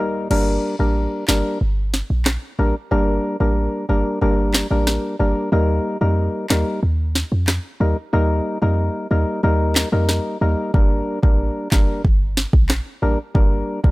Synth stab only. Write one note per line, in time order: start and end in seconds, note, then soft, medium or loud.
0.00 0.28 G3 medium
0.00 0.28 A#3 medium
0.00 0.28 D#4 medium
0.00 0.28 A#4 medium
0.30 0.76 G3 medium
0.30 0.76 A#3 medium
0.30 0.76 D4 medium
0.30 0.76 A#4 loud
0.79 1.24 G3 medium
0.79 1.25 A#3 medium
0.79 1.25 D4 medium
0.79 1.25 A#4 medium
1.28 1.58 G3 medium
1.28 1.59 A#3 medium
1.28 1.59 D4 medium
1.28 1.59 A#4 medium
2.59 2.75 G3 medium
2.59 2.75 A#3 medium
2.59 2.75 D4 medium
2.59 2.75 A#4 medium
2.91 3.36 G3 medium
2.91 3.36 A#3 medium
2.91 3.37 D4 medium
2.91 3.37 A#4 loud
3.40 3.85 G3 medium
3.40 3.85 A#3 medium
3.40 3.85 D4 medium
3.40 3.86 A#4 medium
3.89 4.19 G3 medium
3.89 4.19 A#3 medium
3.89 4.19 D4 medium
3.89 4.19 A#4 medium
4.21 4.67 G3 medium
4.21 4.67 A#3 medium
4.21 4.67 D4 medium
4.21 4.67 A#4 loud
4.71 5.16 G3 medium
4.71 5.16 A#3 medium
4.71 5.16 D4 medium
4.71 5.16 A#4 medium
5.19 5.50 G3 medium
5.19 5.50 A#3 medium
5.19 5.50 D4 medium
5.19 5.50 A#4 medium
5.52 5.97 G3 medium
5.52 5.97 A#3 medium
5.52 5.97 D#4 medium
5.52 5.98 A#4 loud
6.01 6.46 G3 medium
6.01 6.46 A#3 medium
6.01 6.46 D#4 medium
6.01 6.46 A#4 medium
6.50 6.80 G3 medium
6.50 6.80 A#3 medium
6.50 6.80 D#4 medium
6.50 6.80 A#4 medium
7.80 7.97 G3 medium
7.80 7.97 A#3 medium
7.80 7.97 D#4 medium
7.80 7.97 A#4 medium
8.13 8.58 G3 medium
8.13 8.58 A#3 medium
8.13 8.58 D#4 medium
8.13 8.58 A#4 loud
8.62 9.07 G3 medium
8.62 9.07 A#3 medium
8.62 9.07 D#4 medium
8.62 9.07 A#4 medium
9.11 9.41 G3 medium
9.11 9.41 A#3 medium
9.11 9.41 D#4 medium
9.11 9.41 A#4 medium
9.43 9.88 G3 medium
9.43 9.89 A#3 medium
9.43 9.89 D#4 medium
9.43 9.89 A#4 loud
9.92 10.37 G3 medium
9.92 10.37 A#3 medium
9.92 10.38 D#4 medium
9.92 10.38 A#4 medium
10.41 10.71 G3 medium
10.41 10.72 A#3 medium
10.41 10.72 D#4 medium
10.41 10.72 A#4 medium
10.74 11.19 G3 medium
10.74 11.19 A#3 medium
10.74 11.19 D4 medium
10.74 11.19 A#4 loud
11.23 11.68 G3 medium
11.23 11.68 A#3 medium
11.23 11.68 D4 medium
11.23 11.68 A#4 medium
11.72 12.02 G3 medium
11.72 12.02 A#3 medium
11.72 12.02 D4 medium
11.72 12.02 A#4 medium
13.02 13.18 G3 medium
13.02 13.18 A#3 medium
13.02 13.19 D4 medium
13.02 13.19 A#4 medium
13.35 13.80 G3 medium
13.35 13.80 A#3 medium
13.35 13.80 D4 medium
13.35 13.80 A#4 loud
13.84 13.91 G3 medium
13.84 13.91 A#3 medium
13.84 13.91 D4 medium
13.84 13.91 A#4 medium